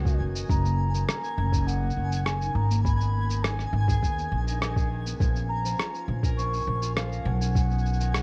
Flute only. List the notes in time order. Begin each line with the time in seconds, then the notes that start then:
Already playing: G#5
0.50 A#5
1.08 A#5
1.67 F#5
2.25 G#5
2.55 A#5
2.84 B5
3.43 G#5
5.49 A#5
6.38 C#6
6.97 F5
7.27 F#5